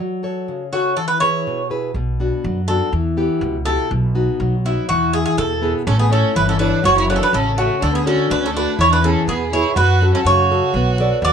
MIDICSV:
0, 0, Header, 1, 5, 480
1, 0, Start_track
1, 0, Tempo, 488998
1, 957, Time_signature, 2, 2, 24, 8
1, 11120, End_track
2, 0, Start_track
2, 0, Title_t, "Bouzouki"
2, 0, Program_c, 0, 25
2, 713, Note_on_c, 0, 66, 71
2, 938, Note_off_c, 0, 66, 0
2, 948, Note_on_c, 0, 69, 83
2, 1053, Note_off_c, 0, 69, 0
2, 1057, Note_on_c, 0, 71, 81
2, 1177, Note_off_c, 0, 71, 0
2, 1181, Note_on_c, 0, 73, 84
2, 1636, Note_off_c, 0, 73, 0
2, 2629, Note_on_c, 0, 69, 84
2, 2858, Note_off_c, 0, 69, 0
2, 3587, Note_on_c, 0, 69, 95
2, 3817, Note_off_c, 0, 69, 0
2, 4572, Note_on_c, 0, 64, 69
2, 4790, Note_off_c, 0, 64, 0
2, 4798, Note_on_c, 0, 66, 94
2, 5023, Note_off_c, 0, 66, 0
2, 5039, Note_on_c, 0, 68, 85
2, 5147, Note_off_c, 0, 68, 0
2, 5159, Note_on_c, 0, 68, 90
2, 5278, Note_off_c, 0, 68, 0
2, 5282, Note_on_c, 0, 69, 96
2, 5617, Note_off_c, 0, 69, 0
2, 5767, Note_on_c, 0, 69, 86
2, 5880, Note_off_c, 0, 69, 0
2, 5884, Note_on_c, 0, 68, 73
2, 5995, Note_off_c, 0, 68, 0
2, 6014, Note_on_c, 0, 69, 77
2, 6231, Note_off_c, 0, 69, 0
2, 6245, Note_on_c, 0, 71, 91
2, 6355, Note_off_c, 0, 71, 0
2, 6369, Note_on_c, 0, 69, 76
2, 6467, Note_off_c, 0, 69, 0
2, 6471, Note_on_c, 0, 71, 83
2, 6723, Note_off_c, 0, 71, 0
2, 6727, Note_on_c, 0, 73, 97
2, 6841, Note_off_c, 0, 73, 0
2, 6853, Note_on_c, 0, 73, 80
2, 6963, Note_off_c, 0, 73, 0
2, 6967, Note_on_c, 0, 71, 81
2, 7020, Note_off_c, 0, 71, 0
2, 7027, Note_on_c, 0, 69, 69
2, 7084, Note_off_c, 0, 69, 0
2, 7096, Note_on_c, 0, 71, 89
2, 7201, Note_off_c, 0, 71, 0
2, 7208, Note_on_c, 0, 69, 88
2, 7439, Note_on_c, 0, 66, 77
2, 7451, Note_off_c, 0, 69, 0
2, 7680, Note_on_c, 0, 69, 88
2, 7687, Note_off_c, 0, 66, 0
2, 7792, Note_off_c, 0, 69, 0
2, 7806, Note_on_c, 0, 68, 78
2, 7920, Note_off_c, 0, 68, 0
2, 7924, Note_on_c, 0, 69, 75
2, 8155, Note_off_c, 0, 69, 0
2, 8159, Note_on_c, 0, 71, 96
2, 8283, Note_off_c, 0, 71, 0
2, 8302, Note_on_c, 0, 69, 74
2, 8404, Note_off_c, 0, 69, 0
2, 8408, Note_on_c, 0, 71, 85
2, 8627, Note_off_c, 0, 71, 0
2, 8645, Note_on_c, 0, 73, 88
2, 8759, Note_off_c, 0, 73, 0
2, 8763, Note_on_c, 0, 71, 82
2, 8875, Note_on_c, 0, 69, 81
2, 8885, Note_off_c, 0, 71, 0
2, 9100, Note_off_c, 0, 69, 0
2, 9117, Note_on_c, 0, 68, 90
2, 9357, Note_on_c, 0, 73, 82
2, 9365, Note_off_c, 0, 68, 0
2, 9580, Note_off_c, 0, 73, 0
2, 9590, Note_on_c, 0, 71, 90
2, 9928, Note_off_c, 0, 71, 0
2, 9962, Note_on_c, 0, 69, 80
2, 10072, Note_off_c, 0, 69, 0
2, 10076, Note_on_c, 0, 73, 101
2, 10996, Note_off_c, 0, 73, 0
2, 11039, Note_on_c, 0, 74, 105
2, 11120, Note_off_c, 0, 74, 0
2, 11120, End_track
3, 0, Start_track
3, 0, Title_t, "Nylon-string guitar"
3, 0, Program_c, 1, 24
3, 0, Note_on_c, 1, 54, 56
3, 225, Note_on_c, 1, 66, 39
3, 230, Note_on_c, 1, 69, 36
3, 235, Note_on_c, 1, 73, 45
3, 462, Note_off_c, 1, 54, 0
3, 474, Note_on_c, 1, 49, 63
3, 615, Note_off_c, 1, 66, 0
3, 616, Note_off_c, 1, 69, 0
3, 620, Note_off_c, 1, 73, 0
3, 713, Note_on_c, 1, 66, 45
3, 715, Note_on_c, 1, 69, 37
3, 717, Note_on_c, 1, 73, 48
3, 907, Note_off_c, 1, 66, 0
3, 907, Note_off_c, 1, 69, 0
3, 909, Note_off_c, 1, 73, 0
3, 942, Note_off_c, 1, 49, 0
3, 951, Note_on_c, 1, 52, 59
3, 1192, Note_on_c, 1, 64, 41
3, 1199, Note_on_c, 1, 68, 39
3, 1200, Note_on_c, 1, 71, 45
3, 1421, Note_off_c, 1, 52, 0
3, 1443, Note_on_c, 1, 47, 60
3, 1580, Note_off_c, 1, 64, 0
3, 1581, Note_off_c, 1, 68, 0
3, 1584, Note_off_c, 1, 71, 0
3, 1670, Note_on_c, 1, 64, 36
3, 1676, Note_on_c, 1, 68, 39
3, 1678, Note_on_c, 1, 71, 46
3, 1867, Note_off_c, 1, 64, 0
3, 1868, Note_off_c, 1, 68, 0
3, 1871, Note_off_c, 1, 71, 0
3, 1907, Note_off_c, 1, 47, 0
3, 1919, Note_on_c, 1, 47, 62
3, 2158, Note_on_c, 1, 59, 43
3, 2162, Note_on_c, 1, 62, 37
3, 2169, Note_on_c, 1, 66, 45
3, 2386, Note_off_c, 1, 47, 0
3, 2402, Note_on_c, 1, 54, 62
3, 2543, Note_off_c, 1, 59, 0
3, 2546, Note_off_c, 1, 62, 0
3, 2548, Note_off_c, 1, 66, 0
3, 2635, Note_on_c, 1, 59, 38
3, 2640, Note_on_c, 1, 62, 37
3, 2646, Note_on_c, 1, 66, 49
3, 2830, Note_off_c, 1, 59, 0
3, 2832, Note_off_c, 1, 62, 0
3, 2836, Note_off_c, 1, 66, 0
3, 2867, Note_off_c, 1, 54, 0
3, 2880, Note_on_c, 1, 52, 64
3, 3112, Note_on_c, 1, 59, 42
3, 3118, Note_on_c, 1, 64, 42
3, 3118, Note_on_c, 1, 67, 51
3, 3346, Note_off_c, 1, 52, 0
3, 3364, Note_on_c, 1, 47, 64
3, 3501, Note_off_c, 1, 59, 0
3, 3502, Note_off_c, 1, 64, 0
3, 3504, Note_off_c, 1, 67, 0
3, 3597, Note_on_c, 1, 59, 45
3, 3601, Note_on_c, 1, 64, 40
3, 3607, Note_on_c, 1, 67, 50
3, 3791, Note_off_c, 1, 59, 0
3, 3794, Note_off_c, 1, 64, 0
3, 3796, Note_off_c, 1, 67, 0
3, 3824, Note_off_c, 1, 47, 0
3, 3836, Note_on_c, 1, 47, 65
3, 4072, Note_on_c, 1, 59, 43
3, 4077, Note_on_c, 1, 63, 40
3, 4077, Note_on_c, 1, 66, 52
3, 4304, Note_off_c, 1, 47, 0
3, 4321, Note_on_c, 1, 54, 65
3, 4460, Note_off_c, 1, 59, 0
3, 4462, Note_off_c, 1, 63, 0
3, 4463, Note_off_c, 1, 66, 0
3, 4566, Note_on_c, 1, 59, 44
3, 4574, Note_on_c, 1, 63, 42
3, 4580, Note_on_c, 1, 66, 53
3, 4758, Note_off_c, 1, 59, 0
3, 4760, Note_off_c, 1, 63, 0
3, 4765, Note_off_c, 1, 66, 0
3, 4787, Note_off_c, 1, 54, 0
3, 4808, Note_on_c, 1, 52, 65
3, 5032, Note_on_c, 1, 59, 43
3, 5039, Note_on_c, 1, 64, 46
3, 5047, Note_on_c, 1, 68, 50
3, 5271, Note_off_c, 1, 52, 0
3, 5284, Note_on_c, 1, 47, 74
3, 5421, Note_off_c, 1, 59, 0
3, 5423, Note_off_c, 1, 64, 0
3, 5429, Note_off_c, 1, 68, 0
3, 5515, Note_on_c, 1, 59, 47
3, 5521, Note_on_c, 1, 64, 42
3, 5526, Note_on_c, 1, 68, 51
3, 5710, Note_off_c, 1, 59, 0
3, 5714, Note_off_c, 1, 64, 0
3, 5715, Note_off_c, 1, 68, 0
3, 5748, Note_off_c, 1, 47, 0
3, 5761, Note_on_c, 1, 57, 69
3, 5993, Note_on_c, 1, 64, 44
3, 5998, Note_on_c, 1, 69, 40
3, 6004, Note_on_c, 1, 73, 53
3, 6227, Note_off_c, 1, 57, 0
3, 6239, Note_on_c, 1, 52, 74
3, 6380, Note_off_c, 1, 64, 0
3, 6383, Note_off_c, 1, 69, 0
3, 6387, Note_off_c, 1, 73, 0
3, 6474, Note_on_c, 1, 64, 44
3, 6480, Note_on_c, 1, 69, 40
3, 6487, Note_on_c, 1, 73, 49
3, 6669, Note_off_c, 1, 64, 0
3, 6673, Note_off_c, 1, 69, 0
3, 6675, Note_off_c, 1, 73, 0
3, 6705, Note_off_c, 1, 52, 0
3, 6720, Note_on_c, 1, 54, 63
3, 6958, Note_on_c, 1, 66, 48
3, 6964, Note_on_c, 1, 69, 41
3, 6968, Note_on_c, 1, 73, 54
3, 7186, Note_off_c, 1, 54, 0
3, 7206, Note_on_c, 1, 49, 74
3, 7343, Note_off_c, 1, 66, 0
3, 7347, Note_off_c, 1, 69, 0
3, 7348, Note_off_c, 1, 73, 0
3, 7437, Note_on_c, 1, 66, 44
3, 7444, Note_on_c, 1, 69, 41
3, 7447, Note_on_c, 1, 73, 52
3, 7630, Note_off_c, 1, 66, 0
3, 7635, Note_off_c, 1, 69, 0
3, 7635, Note_off_c, 1, 73, 0
3, 7668, Note_off_c, 1, 49, 0
3, 7688, Note_on_c, 1, 50, 68
3, 7911, Note_on_c, 1, 62, 47
3, 7914, Note_on_c, 1, 66, 41
3, 7919, Note_on_c, 1, 69, 52
3, 8149, Note_off_c, 1, 50, 0
3, 8153, Note_on_c, 1, 57, 63
3, 8298, Note_off_c, 1, 62, 0
3, 8299, Note_off_c, 1, 66, 0
3, 8303, Note_off_c, 1, 69, 0
3, 8399, Note_on_c, 1, 62, 45
3, 8404, Note_on_c, 1, 66, 43
3, 8409, Note_on_c, 1, 69, 50
3, 8592, Note_off_c, 1, 62, 0
3, 8593, Note_off_c, 1, 66, 0
3, 8594, Note_off_c, 1, 69, 0
3, 8621, Note_off_c, 1, 57, 0
3, 8636, Note_on_c, 1, 52, 70
3, 8877, Note_on_c, 1, 59, 42
3, 8877, Note_on_c, 1, 64, 42
3, 8882, Note_on_c, 1, 68, 54
3, 9103, Note_off_c, 1, 52, 0
3, 9128, Note_on_c, 1, 47, 61
3, 9261, Note_off_c, 1, 64, 0
3, 9262, Note_off_c, 1, 59, 0
3, 9263, Note_off_c, 1, 68, 0
3, 9354, Note_on_c, 1, 59, 43
3, 9359, Note_on_c, 1, 64, 38
3, 9361, Note_on_c, 1, 68, 51
3, 9548, Note_off_c, 1, 59, 0
3, 9550, Note_off_c, 1, 64, 0
3, 9551, Note_off_c, 1, 68, 0
3, 9588, Note_off_c, 1, 47, 0
3, 9590, Note_on_c, 1, 54, 65
3, 9834, Note_on_c, 1, 61, 45
3, 9839, Note_on_c, 1, 66, 42
3, 9840, Note_on_c, 1, 69, 56
3, 10059, Note_off_c, 1, 54, 0
3, 10082, Note_on_c, 1, 49, 66
3, 10219, Note_off_c, 1, 61, 0
3, 10222, Note_off_c, 1, 66, 0
3, 10222, Note_off_c, 1, 69, 0
3, 10314, Note_on_c, 1, 61, 43
3, 10320, Note_on_c, 1, 66, 40
3, 10322, Note_on_c, 1, 69, 50
3, 10507, Note_off_c, 1, 61, 0
3, 10509, Note_off_c, 1, 66, 0
3, 10512, Note_off_c, 1, 69, 0
3, 10545, Note_off_c, 1, 49, 0
3, 10566, Note_on_c, 1, 59, 72
3, 10798, Note_on_c, 1, 69, 47
3, 10799, Note_off_c, 1, 59, 0
3, 10803, Note_on_c, 1, 71, 40
3, 10804, Note_on_c, 1, 74, 51
3, 11041, Note_on_c, 1, 54, 65
3, 11120, Note_off_c, 1, 54, 0
3, 11120, Note_off_c, 1, 69, 0
3, 11120, Note_off_c, 1, 71, 0
3, 11120, Note_off_c, 1, 74, 0
3, 11120, End_track
4, 0, Start_track
4, 0, Title_t, "Violin"
4, 0, Program_c, 2, 40
4, 5762, Note_on_c, 2, 61, 73
4, 5874, Note_off_c, 2, 61, 0
4, 5886, Note_on_c, 2, 59, 62
4, 5996, Note_off_c, 2, 59, 0
4, 6002, Note_on_c, 2, 61, 68
4, 6225, Note_off_c, 2, 61, 0
4, 6242, Note_on_c, 2, 64, 65
4, 6353, Note_off_c, 2, 64, 0
4, 6367, Note_on_c, 2, 61, 62
4, 6476, Note_off_c, 2, 61, 0
4, 6480, Note_on_c, 2, 62, 66
4, 6704, Note_off_c, 2, 62, 0
4, 6722, Note_on_c, 2, 66, 84
4, 6833, Note_off_c, 2, 66, 0
4, 6849, Note_on_c, 2, 64, 68
4, 6957, Note_off_c, 2, 64, 0
4, 6963, Note_on_c, 2, 62, 78
4, 7004, Note_off_c, 2, 62, 0
4, 7010, Note_on_c, 2, 61, 66
4, 7061, Note_off_c, 2, 61, 0
4, 7067, Note_on_c, 2, 62, 62
4, 7185, Note_off_c, 2, 62, 0
4, 7199, Note_on_c, 2, 61, 71
4, 7423, Note_off_c, 2, 61, 0
4, 7433, Note_on_c, 2, 57, 67
4, 7659, Note_off_c, 2, 57, 0
4, 7669, Note_on_c, 2, 62, 72
4, 7786, Note_off_c, 2, 62, 0
4, 7791, Note_on_c, 2, 59, 61
4, 7907, Note_off_c, 2, 59, 0
4, 7911, Note_on_c, 2, 61, 71
4, 8138, Note_off_c, 2, 61, 0
4, 8158, Note_on_c, 2, 62, 66
4, 8260, Note_off_c, 2, 62, 0
4, 8266, Note_on_c, 2, 61, 71
4, 8384, Note_off_c, 2, 61, 0
4, 8389, Note_on_c, 2, 62, 69
4, 8617, Note_off_c, 2, 62, 0
4, 8625, Note_on_c, 2, 64, 81
4, 8740, Note_off_c, 2, 64, 0
4, 8746, Note_on_c, 2, 62, 69
4, 8864, Note_off_c, 2, 62, 0
4, 8871, Note_on_c, 2, 61, 75
4, 9097, Note_off_c, 2, 61, 0
4, 9113, Note_on_c, 2, 59, 70
4, 9339, Note_off_c, 2, 59, 0
4, 9350, Note_on_c, 2, 64, 75
4, 9577, Note_off_c, 2, 64, 0
4, 9585, Note_on_c, 2, 66, 84
4, 9925, Note_off_c, 2, 66, 0
4, 9956, Note_on_c, 2, 61, 64
4, 10068, Note_off_c, 2, 61, 0
4, 10076, Note_on_c, 2, 66, 73
4, 10996, Note_off_c, 2, 66, 0
4, 11033, Note_on_c, 2, 66, 77
4, 11120, Note_off_c, 2, 66, 0
4, 11120, End_track
5, 0, Start_track
5, 0, Title_t, "Upright bass"
5, 0, Program_c, 3, 32
5, 1908, Note_on_c, 3, 35, 82
5, 2248, Note_off_c, 3, 35, 0
5, 2399, Note_on_c, 3, 42, 93
5, 2736, Note_off_c, 3, 42, 0
5, 2871, Note_on_c, 3, 40, 94
5, 3211, Note_off_c, 3, 40, 0
5, 3349, Note_on_c, 3, 37, 91
5, 3689, Note_off_c, 3, 37, 0
5, 3836, Note_on_c, 3, 35, 96
5, 4174, Note_off_c, 3, 35, 0
5, 4316, Note_on_c, 3, 35, 94
5, 4654, Note_off_c, 3, 35, 0
5, 4804, Note_on_c, 3, 40, 89
5, 5139, Note_off_c, 3, 40, 0
5, 5275, Note_on_c, 3, 40, 94
5, 5613, Note_off_c, 3, 40, 0
5, 5760, Note_on_c, 3, 33, 107
5, 6097, Note_off_c, 3, 33, 0
5, 6246, Note_on_c, 3, 31, 85
5, 6580, Note_off_c, 3, 31, 0
5, 6712, Note_on_c, 3, 30, 100
5, 7051, Note_off_c, 3, 30, 0
5, 7195, Note_on_c, 3, 33, 89
5, 7533, Note_off_c, 3, 33, 0
5, 7679, Note_on_c, 3, 38, 102
5, 8015, Note_off_c, 3, 38, 0
5, 8150, Note_on_c, 3, 38, 90
5, 8489, Note_off_c, 3, 38, 0
5, 8625, Note_on_c, 3, 40, 98
5, 8966, Note_off_c, 3, 40, 0
5, 9104, Note_on_c, 3, 40, 88
5, 9445, Note_off_c, 3, 40, 0
5, 9580, Note_on_c, 3, 42, 108
5, 9922, Note_off_c, 3, 42, 0
5, 10057, Note_on_c, 3, 42, 85
5, 10400, Note_off_c, 3, 42, 0
5, 10539, Note_on_c, 3, 35, 97
5, 10881, Note_off_c, 3, 35, 0
5, 11013, Note_on_c, 3, 39, 95
5, 11120, Note_off_c, 3, 39, 0
5, 11120, End_track
0, 0, End_of_file